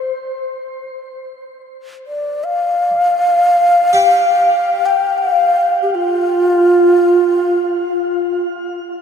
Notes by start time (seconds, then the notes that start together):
Already playing: A4 C5
2.07 D5
2.44 F5
3.93 G4
4.86 G5
5.18 F5
5.82 G4
5.91 G4
5.95 F4